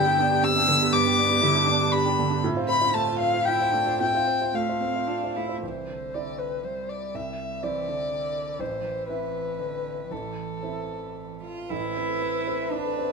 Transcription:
0.00 0.14 D3 medium
0.00 0.18 B3 medium
0.00 0.06 D4 medium
0.00 0.21 E4 medium
0.00 0.07 G4 medium
0.00 0.46 G5 medium
0.06 0.17 D4 medium
0.06 0.18 G4 medium
0.18 0.38 B3 medium
0.18 0.45 D4 medium
0.18 0.27 D5 medium
0.31 0.54 D4 soft
0.31 0.54 G4 medium
0.31 0.39 D5 medium
0.43 0.69 C4 medium
0.43 0.51 G4 medium
0.43 0.94 E6 loud
0.56 0.67 D4 medium
0.56 0.67 G4 medium
0.56 0.64 G5 medium
0.68 0.88 D3 medium
0.68 1.43 B3 medium
0.81 0.92 D4 soft
0.81 0.92 G4 medium
0.92 1.05 G2 medium
0.92 1.00 G4 medium
0.92 1.94 D6 medium
1.05 1.16 D4 medium
1.05 1.16 G4 medium
1.05 1.13 G5 medium
1.18 1.38 B3 medium
1.18 1.25 D5 medium
1.29 1.41 D4 soft
1.29 1.42 G4 medium
1.29 1.37 D5 medium
1.41 1.63 D3 medium
1.41 1.67 E4 medium
1.41 1.50 G4 medium
1.55 1.66 D4 medium
1.55 1.67 G4 medium
1.66 1.88 B3 medium
1.66 2.43 D4 medium
1.66 1.75 D5 medium
1.81 2.04 D4 medium
1.81 2.03 G4 soft
1.92 2.00 G4 medium
1.92 2.43 B5 medium
2.05 2.17 D4 soft
2.05 2.17 G4 soft
2.05 2.13 G5 medium
2.17 2.39 D3 medium
2.17 2.25 G5 soft
2.31 2.42 D4 soft
2.31 2.42 G4 medium
2.41 2.56 A2 medium
2.41 2.93 C4 medium
2.41 2.51 F4 medium
2.55 2.68 F4 soft
2.55 2.68 C5 medium
2.55 2.63 F5 medium
2.68 2.89 C4 medium
2.68 2.76 C5 medium
2.68 2.96 B5 medium
2.81 2.93 F4 soft
2.81 2.89 C5 medium
2.81 2.93 C5 soft
2.91 3.15 A3 medium
2.91 3.45 F4 medium
2.91 3.01 F4 medium
2.91 3.19 A5 medium
3.08 3.20 F4 soft
3.08 3.20 C5 soft
3.19 3.41 C4 soft
3.19 3.27 C5 soft
3.19 3.47 F5 medium
3.32 3.58 F4 soft
3.32 3.41 C5 soft
3.32 3.58 C5 soft
3.45 3.74 E4 medium
3.45 3.54 F4 medium
3.45 4.00 G5 medium
3.59 3.72 F4 soft
3.59 3.73 C5 soft
3.59 3.67 F5 medium
3.72 3.95 A3 soft
3.72 4.01 D4 medium
3.72 3.80 F5 soft
3.87 3.99 F4 soft
3.87 3.99 C5 soft
4.00 4.14 A2 medium
4.00 4.49 C4 medium
4.00 4.08 F4 medium
4.00 4.57 G5 medium
4.14 4.27 F4 soft
4.14 4.27 C5 soft
4.14 4.22 F5 medium
4.27 4.49 C4 soft
4.27 4.36 C5 soft
4.40 4.54 F4 soft
4.40 4.49 C5 soft
4.40 4.54 C5 soft
4.54 4.76 A3 soft
4.54 4.82 A3 medium
4.54 4.62 F4 medium
4.54 5.36 F5 medium
4.69 4.81 F4 soft
4.69 4.81 C5 soft
4.81 5.09 C4 medium
4.81 5.04 C4 soft
4.81 4.89 C5 soft
4.94 5.20 F4 soft
4.94 5.03 C5 soft
4.94 5.20 C5 soft
5.07 5.38 D4 medium
5.07 5.16 F4 medium
5.21 5.35 F4 soft
5.21 5.36 C5 soft
5.21 5.30 F5 soft
5.35 5.58 A3 soft
5.35 5.62 E4 medium
5.35 5.43 F5 soft
5.49 5.61 F4 soft
5.49 5.61 C5 soft
5.62 6.12 C2 soft
5.62 5.90 E3 soft
5.62 6.16 C5 soft
5.89 6.65 D3 soft
6.14 7.11 C4 soft
6.14 7.11 E4 soft
6.14 6.40 D5 soft
6.14 7.11 D5 soft
6.39 6.66 B4 soft
6.64 7.66 G3 soft
6.64 6.91 C5 soft
6.89 7.17 D5 soft
7.15 7.62 C2 soft
7.15 7.65 E5 soft
7.63 7.89 E3 soft
7.63 8.56 C4 soft
7.63 8.56 E4 soft
7.63 8.62 D5 soft
7.63 8.56 D5 soft
7.88 8.11 D3 soft
8.12 8.61 D3 soft
8.59 9.08 A1 soft
8.59 8.84 E3 medium
8.59 9.08 C5 soft
8.84 9.60 E3 soft
9.09 10.07 C4 soft
9.09 10.08 E4 soft
9.09 10.13 B4 soft
9.09 10.08 E5 soft
9.58 10.10 D3 soft
10.10 10.63 A1 soft
10.10 11.41 E3 soft
10.10 11.50 A4 soft
10.63 11.66 C4 soft
10.63 11.66 E4 soft
10.63 11.66 E5 soft
11.44 11.71 F4 medium
11.70 13.12 A1 soft
11.70 12.73 E4 medium
11.70 11.79 A4 soft
11.70 13.12 B4 soft
11.84 11.91 C5 soft
11.97 12.37 C4 soft
12.09 12.17 A4 medium
12.22 12.63 B4 soft
12.35 12.42 C5 soft
12.47 12.88 C4 soft
12.47 12.55 A4 medium
12.61 12.68 E5 soft
12.72 13.12 D4 medium
12.72 13.12 E4 soft
12.72 12.81 A5 soft
12.86 12.93 A4 medium
12.99 13.12 C4 soft
12.99 13.06 C5 soft

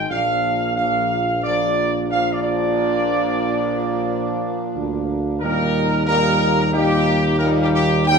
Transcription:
0.10 4.43 A#1 medium
0.10 0.77 A#2 medium
0.10 0.77 F3 medium
0.10 0.74 A#3 medium
0.10 0.74 D4 medium
0.10 0.73 F5 loud
0.76 1.41 A#2 medium
0.76 1.41 F3 medium
0.76 1.27 A#3 medium
0.76 1.27 D4 medium
0.76 1.40 F5 medium
1.43 2.07 A#2 medium
1.43 2.07 F3 medium
1.43 2.06 A#3 medium
1.43 2.06 D4 medium
1.43 2.06 D5 loud
2.10 5.24 A#2 medium
2.10 5.24 F3 medium
2.10 5.37 A#3 loud
2.10 5.37 D4 medium
2.10 2.31 F5 loud
2.33 2.41 D5 medium
2.43 4.70 D5 medium
4.75 5.43 D2 medium
5.41 8.19 D#2 loud
5.41 6.03 A#2 medium
5.41 6.03 G3 medium
5.41 6.03 A#3 medium
5.41 6.06 D#4 medium
5.41 6.03 A#4 loud
6.07 6.69 A#2 medium
6.07 6.69 G3 medium
6.07 6.68 A#3 medium
6.07 6.68 D#4 medium
6.07 6.68 A#4 loud
6.73 7.35 A#2 medium
6.73 7.35 G3 medium
6.73 7.35 A#3 medium
6.73 7.35 D#4 loud
6.73 7.39 G4 loud
7.38 8.03 A#2 loud
7.38 8.03 G3 loud
7.38 8.02 A#3 loud
7.38 8.02 D#4 loud
7.38 7.49 A#4 loud
7.62 7.67 G4 loud
7.73 8.05 G4 loud
8.06 8.19 A#2 medium
8.06 8.19 G3 loud
8.06 8.19 A#3 medium
8.06 8.19 D#4 medium
8.06 8.19 G5 loud

